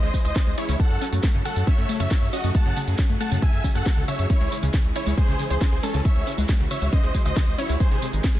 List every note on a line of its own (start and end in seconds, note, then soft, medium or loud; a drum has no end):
0.00 0.10 C#2 medium
0.00 7.76 C#3 medium
0.00 0.07 C#3 loud
0.00 0.76 E3 medium
0.00 0.76 G#3 medium
0.00 0.76 E4 medium
0.00 0.76 G#4 medium
0.00 0.18 C5 medium
0.00 0.18 D#5 loud
0.00 closed hi-hat medium
0.14 0.18 C#3 medium
0.14 kick medium
0.14 open hi-hat loud
0.14 tambourine medium
0.25 0.32 C#2 medium
0.25 0.51 C5 medium
0.25 0.51 D#5 loud
0.25 closed hi-hat medium
0.25 tambourine soft
0.36 0.40 C#4 loud
0.36 kick loud
0.36 snare loud
0.36 closed hi-hat medium
0.36 tambourine soft
0.47 0.54 C#2 medium
0.47 0.51 G#3 medium
0.47 closed hi-hat medium
0.58 0.68 G#3 medium
0.58 0.75 E4 medium
0.58 0.75 C#5 medium
0.58 open hi-hat loud
0.58 tambourine medium
0.69 0.76 C#2 medium
0.69 0.73 C#3 loud
0.69 closed hi-hat medium
0.69 tambourine soft
0.79 0.84 C#3 medium
0.79 4.26 F#3 medium
0.79 4.26 A3 medium
0.79 4.26 F#4 medium
0.79 1.06 A4 medium
0.79 2.53 A4 loud
0.79 1.06 F#5 loud
0.79 kick loud
0.79 closed hi-hat medium
0.79 tambourine soft
0.91 0.98 F#2 medium
0.91 closed hi-hat medium
1.02 1.06 C#4 loud
1.02 open hi-hat loud
1.02 tambourine medium
1.07 closed hi-hat medium
1.12 1.20 F#2 medium
1.12 1.17 A3 medium
1.12 closed hi-hat soft
1.12 tambourine soft
1.23 1.34 A3 medium
1.23 kick loud
1.23 snare loud
1.23 closed hi-hat medium
1.23 tambourine soft
1.34 1.41 F#2 medium
1.34 1.39 C#3 loud
1.34 closed hi-hat soft
1.45 1.50 C#3 medium
1.45 1.63 A4 medium
1.45 1.63 F#5 medium
1.45 open hi-hat loud
1.45 tambourine medium
1.56 1.63 F#2 medium
1.56 closed hi-hat medium
1.56 tambourine soft
1.67 1.72 C#4 loud
1.67 1.93 C#5 medium
1.67 1.93 E5 medium
1.67 1.93 E5 loud
1.67 kick loud
1.67 closed hi-hat medium
1.67 tambourine soft
1.78 1.85 F#2 medium
1.78 1.82 A3 medium
1.78 closed hi-hat medium
1.89 2.00 A3 medium
1.89 open hi-hat loud
1.89 tambourine medium
2.00 2.07 F#2 medium
2.00 2.04 C#3 loud
2.00 2.26 C#5 medium
2.00 2.26 E5 loud
2.00 closed hi-hat medium
2.00 tambourine soft
2.11 2.15 C#3 medium
2.11 kick loud
2.11 snare loud
2.11 closed hi-hat medium
2.11 tambourine soft
2.22 2.29 F#2 medium
2.22 closed hi-hat medium
2.33 2.37 C#4 loud
2.33 2.50 F#4 medium
2.33 2.50 D#5 medium
2.33 open hi-hat loud
2.33 tambourine medium
2.44 2.51 F#2 medium
2.44 2.48 A3 medium
2.44 closed hi-hat medium
2.44 tambourine soft
2.55 2.65 A3 medium
2.55 6.02 G#4 medium
2.55 2.81 F#5 medium
2.55 2.81 A5 loud
2.55 2.81 A5 medium
2.55 kick loud
2.55 closed hi-hat medium
2.55 tambourine soft
2.66 2.73 F#2 medium
2.66 2.70 C#3 loud
2.66 closed hi-hat soft
2.77 2.81 C#3 medium
2.77 open hi-hat loud
2.77 tambourine medium
2.82 closed hi-hat medium
2.88 2.95 F#2 medium
2.88 closed hi-hat soft
2.88 tambourine soft
2.99 3.03 C#4 loud
2.99 kick loud
2.99 snare loud
2.99 closed hi-hat medium
2.99 tambourine soft
3.10 3.17 F#2 medium
3.10 3.14 A3 medium
3.10 closed hi-hat medium
3.20 3.31 A3 medium
3.20 3.38 F#5 medium
3.20 3.38 A5 medium
3.20 open hi-hat loud
3.20 tambourine medium
3.31 3.39 F#2 medium
3.31 3.36 C#3 loud
3.31 closed hi-hat soft
3.31 tambourine soft
3.42 3.47 C#3 medium
3.42 3.69 E5 medium
3.42 3.69 G#5 medium
3.42 3.69 G#5 loud
3.42 kick loud
3.42 closed hi-hat medium
3.42 tambourine soft
3.53 3.60 F#2 medium
3.53 closed hi-hat medium
3.64 3.69 C#4 loud
3.64 kick medium
3.64 open hi-hat loud
3.64 tambourine medium
3.75 3.82 F#2 medium
3.75 3.79 A3 medium
3.75 4.01 A4 medium
3.75 4.01 F#5 loud
3.75 closed hi-hat soft
3.75 tambourine soft
3.86 3.97 A3 medium
3.86 kick loud
3.86 snare loud
3.86 closed hi-hat medium
3.86 tambourine soft
3.97 4.04 C#2 medium
3.97 4.01 C#3 loud
3.97 closed hi-hat soft
4.08 4.12 C#3 medium
4.08 4.26 C#5 medium
4.08 4.26 E5 medium
4.08 open hi-hat loud
4.08 tambourine medium
4.19 4.26 F#2 medium
4.19 closed hi-hat medium
4.19 tambourine soft
4.30 7.77 E3 medium
4.30 8.40 G#3 medium
4.30 4.34 C#4 loud
4.30 7.77 E4 medium
4.30 4.56 E4 medium
4.30 4.56 C#5 medium
4.30 4.56 C#5 loud
4.30 kick loud
4.30 closed hi-hat medium
4.30 tambourine soft
4.41 4.48 C#2 medium
4.41 4.45 G#3 medium
4.41 closed hi-hat soft
4.52 4.62 G#3 medium
4.52 open hi-hat loud
4.52 tambourine medium
4.57 closed hi-hat medium
4.63 4.70 C#2 medium
4.63 4.67 C#3 loud
4.63 closed hi-hat soft
4.63 tambourine soft
4.74 kick loud
4.74 snare loud
4.74 closed hi-hat medium
4.74 tambourine soft
4.85 4.92 C#2 medium
4.85 closed hi-hat medium
4.96 5.00 C#4 loud
4.96 5.13 E4 medium
4.96 5.13 C#5 medium
4.96 open hi-hat loud
4.96 tambourine medium
5.07 5.14 C#2 medium
5.07 5.11 G#3 medium
5.07 closed hi-hat soft
5.07 tambourine soft
5.17 5.28 G#3 medium
5.17 5.44 G#4 medium
5.17 5.44 C5 loud
5.17 kick loud
5.17 closed hi-hat medium
5.17 tambourine soft
5.28 5.36 C#2 medium
5.28 5.33 C#3 loud
5.28 closed hi-hat medium
5.39 5.44 C#3 medium
5.39 open hi-hat loud
5.39 tambourine medium
5.50 5.57 C#2 medium
5.50 5.77 G#4 medium
5.50 5.77 C5 loud
5.50 closed hi-hat soft
5.50 tambourine soft
5.61 5.66 C#4 loud
5.61 kick loud
5.61 snare loud
5.61 closed hi-hat medium
5.61 tambourine soft
5.72 5.79 C#2 medium
5.72 5.77 G#3 medium
5.72 closed hi-hat medium
5.83 5.94 G#3 medium
5.83 6.01 C#4 medium
5.83 6.01 A4 medium
5.83 6.01 A4 loud
5.83 open hi-hat loud
5.83 tambourine medium
5.94 6.01 C#2 medium
5.94 5.99 C#3 loud
5.94 closed hi-hat medium
5.94 tambourine soft
6.05 6.09 C#3 medium
6.05 7.79 F#4 medium
6.05 6.31 C#5 medium
6.05 6.31 E5 medium
6.05 6.31 E5 loud
6.05 kick loud
6.05 closed hi-hat medium
6.05 tambourine soft
6.16 6.23 C#2 medium
6.16 closed hi-hat medium
6.27 6.31 C#4 loud
6.27 open hi-hat loud
6.27 tambourine medium
6.32 closed hi-hat medium
6.38 6.45 C#2 medium
6.38 6.42 G#3 medium
6.38 closed hi-hat soft
6.38 tambourine soft
6.49 6.59 G#3 medium
6.49 kick loud
6.49 snare loud
6.49 closed hi-hat medium
6.49 tambourine soft
6.60 6.67 C#2 medium
6.60 6.64 C#3 loud
6.60 closed hi-hat medium
6.71 6.75 C#3 medium
6.71 6.88 C#5 medium
6.71 6.88 E5 medium
6.71 open hi-hat loud
6.71 tambourine medium
6.82 6.89 C#2 medium
6.82 closed hi-hat medium
6.82 tambourine soft
6.93 6.97 C#4 loud
6.93 7.19 C5 medium
6.93 7.19 D#5 loud
6.93 7.19 D#5 medium
6.93 kick loud
6.93 closed hi-hat medium
6.93 tambourine soft
7.04 7.11 C#2 medium
7.04 7.08 G#3 medium
7.04 closed hi-hat medium
7.15 7.25 G#3 medium
7.15 kick medium
7.15 open hi-hat loud
7.15 tambourine medium
7.25 7.33 C#2 medium
7.25 7.30 C#3 medium
7.25 7.52 C5 medium
7.25 7.52 D#5 loud
7.25 closed hi-hat soft
7.25 tambourine soft
7.37 7.41 C#3 medium
7.37 kick loud
7.37 snare loud
7.37 closed hi-hat medium
7.37 tambourine soft
7.47 7.55 C#2 medium
7.47 closed hi-hat medium
7.58 7.63 C#4 loud
7.58 7.76 E4 medium
7.58 7.76 C#5 medium
7.58 7.76 C#5 loud
7.58 open hi-hat loud
7.58 tambourine medium
7.69 7.76 C#2 medium
7.69 7.74 G#3 medium
7.69 closed hi-hat medium
7.69 tambourine soft
7.80 8.40 C3 medium
7.80 8.40 D#3 medium
7.80 7.91 G#3 medium
7.80 8.40 D#4 medium
7.80 8.07 G#4 medium
7.80 8.40 G#4 loud
7.80 8.07 C5 medium
7.80 8.07 C5 loud
7.80 kick loud
7.80 closed hi-hat medium
7.80 tambourine soft
7.91 7.98 G#1 medium
7.91 7.96 C3 loud
7.91 closed hi-hat medium
8.02 8.07 C3 medium
8.02 open hi-hat loud
8.02 tambourine medium
8.08 closed hi-hat medium
8.13 8.20 G#1 medium
8.13 closed hi-hat medium
8.13 tambourine soft
8.24 8.28 C4 loud
8.24 kick loud
8.24 snare loud
8.24 closed hi-hat medium
8.24 tambourine soft
8.35 8.40 G#1 medium
8.35 8.39 G#3 medium
8.35 closed hi-hat medium